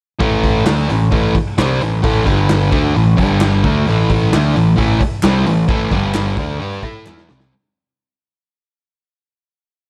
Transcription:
0.20 picked electric bass A1, distorted electric guitar A2 E3 A3, kick, open hi-hat
0.44 kick, open hi-hat
0.66 picked electric bass D2, distorted electric guitar D3 A3 D4, snare, clap, open hi-hat
0.89 picked electric bass A1, distorted electric guitar A2 E3, open hi-hat
1.12 picked electric bass A1, distorted electric guitar A2 E3 A3, kick, open hi-hat
1.34 muted distorted electric guitar stroke, muted picked electric bass stroke, kick, open hi-hat
1.58 picked electric bass C2, distorted electric guitar C3 G3 C4, snare, clap, open hi-hat
1.81 picked electric bass A1, distorted electric guitar A2 E3, open hi-hat
2.02 picked electric bass A1, distorted electric guitar A2 E3 A3, kick, open hi-hat
2.24 picked electric bass G1, distorted electric guitar G2 D3 G3, kick, open hi-hat
2.49 snare, clap, open hi-hat
2.72 picked electric bass D2, distorted electric guitar D3 A3 D4, kick, open hi-hat
2.95 picked electric bass A1, distorted electric guitar A2 E3, open hi-hat
3.16 picked electric bass G1, distorted electric guitar G2 D3 G3, kick, open hi-hat
3.41 snare, clap, open hi-hat
3.64 picked electric bass D2, distorted electric guitar D3 A3 D4, kick, open hi-hat
3.87 picked electric bass A1, distorted electric guitar A2 E3 A3, open hi-hat
4.10 kick, open hi-hat
4.33 picked electric bass D2, distorted electric guitar D3 A3 D4, snare, clap, open hi-hat
4.56 picked electric bass A1, distorted electric guitar A2 E3, open hi-hat
4.76 picked electric bass A1, distorted electric guitar A2 E3 A3, kick, open hi-hat
5.01 muted distorted electric guitar stroke, muted picked electric bass stroke, kick, open hi-hat
5.23 picked electric bass C2, distorted electric guitar C3 G3 C4, snare, clap, open hi-hat
5.46 picked electric bass A1, distorted electric guitar A2 E3, open hi-hat
5.68 picked electric bass A1, distorted electric guitar A2 E3 A3, kick, open hi-hat
5.91 picked electric bass G1, distorted electric guitar G2 D3 G3, kick, open hi-hat
6.14 snare, clap, open hi-hat
6.37 picked electric bass D2, distorted electric guitar D3 A3 D4, kick, open hi-hat
6.60 picked electric bass G2, distorted electric guitar G3 D4 G4, open hi-hat
6.83 picked electric bass A2, distorted electric guitar A3 E4 A4, kick, open hi-hat
7.05 picked electric bass E2, distorted electric guitar E3 B3 E4, snare, clap
7.17 snare
7.28 picked electric bass C2, distorted electric guitar C3 G3 C4, snare
7.40 snare

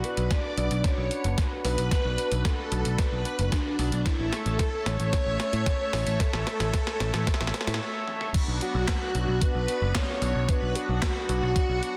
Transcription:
Already playing: analog synth pad D4 F#4 B4
0.04 soft synth lead B4, string machine B4, closed hi-hat
0.17 picked electric bass B1, closed hi-hat
0.31 soft synth lead D5, string machine D5, kick, snare, closed hi-hat
0.57 picked electric bass B1, soft synth lead D5, string machine D5, closed hi-hat
0.71 picked electric bass B1, closed hi-hat
0.84 soft synth lead C#5, string machine C#5, kick, snare, closed hi-hat
0.98 picked electric bass B1
1.11 closed hi-hat
1.24 picked electric bass F#1, closed hi-hat
1.38 kick, snare, closed hi-hat
1.64 picked electric bass B1, soft synth lead B4, string machine B4, open hi-hat
1.78 picked electric bass B1, closed hi-hat
1.91 kick, snare, closed hi-hat
2.05 picked electric bass B1
2.18 closed hi-hat
2.32 picked electric bass B1, closed hi-hat
2.45 soft synth lead A4, string machine A4, kick, snare, closed hi-hat
2.72 picked electric bass B1, closed hi-hat
2.85 picked electric bass B1, closed hi-hat
2.98 soft synth lead B4, string machine B4, kick, snare, closed hi-hat
3.12 picked electric bass B1
3.25 closed hi-hat
3.39 picked electric bass F#1, closed hi-hat
3.52 soft synth lead D4, string machine D4, kick, snare, closed hi-hat
3.79 picked electric bass B1, open hi-hat
3.92 picked electric bass B1, closed hi-hat
4.05 analog synth pad A3 A4 C#5 E5, soft synth lead E4, string machine E4, kick, snare, closed hi-hat
4.19 picked electric bass A1
4.32 soft synth lead A4, string machine A4, snare, closed hi-hat
4.46 picked electric bass A1, closed hi-hat
4.59 kick, snare, closed hi-hat
4.86 picked electric bass A1, soft synth lead C#5, string machine C#5, snare, closed hi-hat
4.99 picked electric bass A1, closed hi-hat
5.13 kick, snare, closed hi-hat
5.26 picked electric bass A1
5.40 snare, closed hi-hat
5.53 picked electric bass A2, closed hi-hat
5.66 kick, snare, closed hi-hat
5.93 picked electric bass A1, soft synth lead C#5, string machine C#5, snare, open hi-hat
6.07 picked electric bass A1, closed hi-hat
6.20 soft synth lead A4, string machine A4, kick, snare, closed hi-hat
6.33 picked electric bass A1, snare
6.47 snare, closed hi-hat
6.60 picked electric bass A1, snare, closed hi-hat
6.74 kick, snare, closed hi-hat
6.87 snare
7.00 picked electric bass A1, snare, closed hi-hat
7.14 picked electric bass A1, snare, closed hi-hat
7.27 kick, snare, closed hi-hat
7.34 snare
7.41 picked electric bass A1, snare
7.47 snare
7.54 snare, closed hi-hat
7.61 snare
7.67 picked electric bass A2, snare, closed hi-hat
7.74 snare
8.08 high tom
8.21 mid tom
8.34 analog synth pad B3 D4 F#4, kick, closed hi-hat, crash
8.48 picked electric bass B1
8.61 string machine F#4, soft synth lead F#4, closed hi-hat
8.75 picked electric bass B1
8.88 kick, snare, clap, closed hi-hat
9.15 picked electric bass B1, closed hi-hat
9.28 picked electric bass B1
9.41 soft synth lead B4, string machine B4, kick, closed hi-hat
9.55 picked electric bass B1
9.68 closed hi-hat
9.82 picked electric bass F#1
9.95 soft synth lead C#5, string machine C#5, kick, snare, clap, closed hi-hat
10.22 picked electric bass B1, open hi-hat
10.35 picked electric bass B1
10.49 soft synth lead B4, string machine B4, kick, closed hi-hat
10.62 picked electric bass B1
10.75 soft synth lead F#4, string machine F#4, closed hi-hat
10.89 picked electric bass B1
11.02 kick, snare, clap, closed hi-hat
11.29 picked electric bass B1, soft synth lead F#4, string machine F#4, closed hi-hat
11.43 picked electric bass B1
11.56 kick, closed hi-hat
11.69 picked electric bass B1
11.83 closed hi-hat

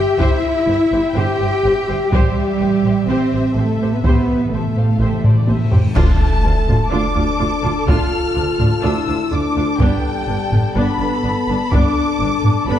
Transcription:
Already playing: french horn section G4, cello section G4, violin section E5 G5
0.19 double bass section G1, cello section E4, french horn section E4, viola section G4 C5, violin section E5, taiko
0.67 double bass section G1, viola section G4 C5
0.92 double bass section G1, viola section G4 C5
1.15 double bass section G1, viola section G4 C5, cello section G4, french horn section G4, violin section G5
1.40 double bass section G1, viola section G4 C5
1.65 double bass section G1, viola section G4 C5
1.89 double bass section G1, viola section G4 C5
2.12 double bass section A1, french horn section G3, cello section G3, violin section G4 E5, viola section G4 C5, taiko
2.35 timpani A2
2.50 timpani A2
2.60 double bass section A1, viola section G4 C5
2.66 timpani A2
2.73 timpani A2
2.80 double bass section A1, timpani A2
2.86 timpani A2, viola section G4 C5
3.03 timpani A2
3.08 double bass section A1, french horn section C4, cello section C4, viola section G4 C5, violin section C5
3.17 timpani A2
3.24 timpani A2
3.32 double bass section A1, timpani A2, viola section G4 C5
3.39 timpani A2
3.47 timpani A2
3.54 double bass section A1, timpani A2, french horn section A3, cello section A3, viola section G4 C5, violin section A4
3.62 timpani A2
3.69 timpani A2
3.76 double bass section A1, timpani A2
3.81 timpani A2, viola section G4 C5
3.92 timpani A2, cello section B3, french horn section B3, violin section B4
4.00 double bass section A1, timpani A2, violin section B4
4.04 timpani A2, cello section B3, french horn section B3, viola section G4 C5, taiko, reverse cymbal
4.14 timpani A2
4.21 timpani A2
4.29 timpani A2
4.37 timpani A2
4.45 timpani A2
4.51 double bass section A1, timpani A2, cello section A3, french horn section A3, viola section G4 C5, violin section A4 E5
4.59 timpani A2
4.67 timpani A2
4.75 double bass section A1, timpani A2, viola section G4 C5, violin section F5
4.82 timpani A2
4.89 timpani A2
4.97 double bass section A1, timpani A2, violin section E5
5.01 timpani A2, viola section G4 C5
5.12 timpani A2
5.19 timpani A2
5.24 double bass section A1, timpani A2, viola section G4 C5, violin section D5, taiko low-mid
5.35 timpani A2
5.42 timpani A2
5.48 double bass section A1, timpani A2, viola section G4 C5, violin section E5, taiko high
5.57 timpani A2
5.64 timpani A2
5.71 double bass section A1, timpani A2, viola section G4 C5, violin section G5, taiko low
5.78 timpani A2
5.86 timpani A2
5.95 cello section D2, double bass section D2, timpani D3, french horn section A3, viola section D4 F4, violin section A4 A5, concert bass drum, taiko, crash, impact
6.45 cello section D2, double bass section D2, viola section D4 F4
6.68 double bass section D2, cello section D2, viola section D4 F4, taiko low-mid
6.90 double bass section D2, cello section D2, viola section D4 F4, french horn section D4, violin section D6
7.15 double bass section D2, cello section D2, viola section D4 F4
7.38 cello section D2, double bass section D2, viola section D4 F4
7.63 double bass section D2, cello section D2, viola section D4 F4
7.87 double bass section D2, cello section D2, viola section D4 F4, french horn section F4, violin section F6, taiko
8.35 double bass section D2, cello section D2, viola section D4 F4
8.58 double bass section D2, cello section D2, viola section D4 F4, taiko low-mid
8.82 cello section D2, double bass section D2, viola section D4 F4, french horn section E4, violin section E6
9.07 double bass section D2, cello section D2, viola section D4 F4
9.31 double bass section D2, cello section D2, viola section D4 F4, french horn section D4, violin section D6
9.56 double bass section D2, cello section D2, viola section D4 F4
9.79 double bass section G1, cello section G2, french horn section G3, viola section B3 D4, violin section A4 G5 A5, taiko
10.27 double bass section G1, cello section G2, viola section B3 D4
10.52 double bass section G1, cello section G2, viola section B3 D4, taiko low-mid
10.75 double bass section G1, cello section G2, viola section B3 D4, french horn section B3, violin section B5
10.99 double bass section G1, cello section G2, viola section B3 D4
11.24 double bass section G1, cello section G2, viola section B3 D4
11.48 double bass section G1, cello section G2, viola section B3 D4
11.72 double bass section G1, cello section G2, viola section B3 D4, french horn section D4, violin section D6, taiko
12.20 double bass section G1, cello section G2, viola section B3 D4
12.43 double bass section G1, cello section G2, viola section B3 D4, taiko low-mid
12.67 double bass section G1, cello section G2, french horn section B3, viola section B3 D4, violin section B5

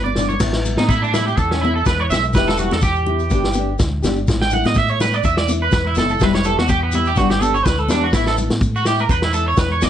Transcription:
Already playing: fingered electric bass G1
0.04 clean electric guitar D5, high conga
0.15 nylon-string guitar D4, snare, low conga, shekere
0.21 nylon-string guitar B3
0.29 clean electric guitar C#5, low conga, shekere
0.40 fingered electric bass A1, nylon-string guitar E3 B3 E4, kick, snare, crash, shekere
0.53 snare, shekere
0.65 nylon-string guitar B3 E4, low conga, shekere
0.77 fingered electric bass A2, clean electric guitar D#4, snare, high conga, shekere
0.89 clean electric guitar E4, kick, shekere
1.02 clean electric guitar D4, shekere
1.13 nylon-string guitar B3 E4, clean electric guitar E4, snare, low conga, shekere
1.27 clean electric guitar G4, shekere
1.37 fingered electric bass E2, clean electric guitar A4, kick, shekere
1.51 clean electric guitar C#4, snare
1.61 nylon-string guitar B3 E4, clean electric guitar E4, high conga
1.76 clean electric guitar A4
1.86 fingered electric bass E2, clean electric guitar B4, kick, snare, shekere
2.00 clean electric guitar C#5
2.10 fingered electric bass B1, nylon-string guitar B3, clean electric guitar E5, snare, high conga, low conga, shekere
2.24 shekere
2.33 fingered electric bass E1, nylon-string guitar E3 B3 E4 G4, clean electric guitar B4, kick, snare, shekere
2.47 clean electric guitar A4, snare, shekere
2.57 nylon-string guitar B3 E4 G4, clean electric guitar F#4, low conga, shekere
2.71 fingered electric bass E2, clean electric guitar A4, snare, high conga, shekere
2.81 clean electric guitar G4, kick, snare, shekere
2.95 shekere
3.06 nylon-string guitar B3 E4 G4, low conga
3.19 shekere
3.30 fingered electric bass G1, nylon-string guitar B3 D4, kick, shekere
3.35 nylon-string guitar G4
3.44 snare
3.53 nylon-string guitar G4, high conga, shekere
3.59 nylon-string guitar D4
3.79 fingered electric bass D2, kick, snare, shekere
4.02 fingered electric bass G1, nylon-string guitar D4 G4, snare, high conga, low conga, shekere
4.16 shekere
4.28 fingered electric bass A1, nylon-string guitar E3 B3, muted nylon-string guitar stroke, kick, snare, shekere
4.41 clean electric guitar G5, snare
4.50 nylon-string guitar E4, clean electric guitar F#5, low conga, shekere
4.55 nylon-string guitar B3
4.63 fingered electric bass A2, clean electric guitar D#5, snare, high conga, shekere
4.74 clean electric guitar E5, kick, snare, shekere
4.88 clean electric guitar C#5, shekere
5.00 clean electric guitar B4, muted nylon-string guitar stroke, snare, low conga, shekere
5.05 nylon-string guitar B3
5.13 clean electric guitar D5, shekere
5.23 fingered electric bass E2, clean electric guitar E5, kick, shekere
5.37 clean electric guitar D5, snare
5.48 nylon-string guitar E4, high conga, shekere
5.53 nylon-string guitar B3
5.62 clean electric guitar B4
5.71 fingered electric bass E2, clean electric guitar B4, kick, snare, shekere
5.87 clean electric guitar E4
5.95 fingered electric bass F#1, nylon-string guitar E4, clean electric guitar A4, snare, high conga, low conga, shekere
5.99 nylon-string guitar B3
6.09 clean electric guitar A4, shekere
6.20 fingered electric bass E1, nylon-string guitar G3 B3 E4 G4, clean electric guitar B4, kick, snare, shekere
6.33 clean electric guitar C#5, snare, shekere
6.44 nylon-string guitar B3 E4 G4, clean electric guitar A4, low conga, shekere
6.58 fingered electric bass E2, clean electric guitar F#4, snare, high conga
6.68 clean electric guitar G4, kick, low conga, shekere
6.83 clean electric guitar B3
6.92 nylon-string guitar E4 G4, clean electric guitar E4, high conga, low conga, shekere
6.96 nylon-string guitar B3
7.05 clean electric guitar G4, shekere
7.16 fingered electric bass G1, nylon-string guitar G3 B3 D4, clean electric guitar F#4, kick, snare, shekere
7.20 nylon-string guitar G4
7.30 clean electric guitar G4, snare, shekere
7.41 nylon-string guitar B3 D4 G4, clean electric guitar A4, high conga, shekere
7.54 clean electric guitar C#5, shekere
7.65 fingered electric bass D2, clean electric guitar B4, kick, snare, shekere
7.78 clean electric guitar A4, shekere
7.89 fingered electric bass E2, clean electric guitar D4, nylon-string guitar D4 G4, snare, high conga, low conga, shekere
7.93 nylon-string guitar B3
8.04 clean electric guitar F#4
8.13 fingered electric bass A1, nylon-string guitar E3 B3 E4, clean electric guitar E4, kick, snare, shekere
8.26 clean electric guitar A4, snare, shekere
8.36 nylon-string guitar B3 E4, low conga, shekere
8.50 fingered electric bass A2, snare, high conga, shekere
8.61 kick, shekere
8.76 clean electric guitar F#4, shekere
8.85 nylon-string guitar B3 E4, clean electric guitar G4, snare, shekere
8.99 clean electric guitar A#4, shekere
9.09 fingered electric bass E2, clean electric guitar B4, kick, shekere
9.22 clean electric guitar E4, snare
9.33 nylon-string guitar E4, clean electric guitar A4, shekere
9.37 nylon-string guitar B3
9.48 clean electric guitar C#5
9.57 fingered electric bass E2, clean electric guitar B4, kick, snare, shekere
9.72 clean electric guitar C#5
9.82 fingered electric bass A1, nylon-string guitar B3 E4, clean electric guitar D5, snare, high conga, low conga, shekere

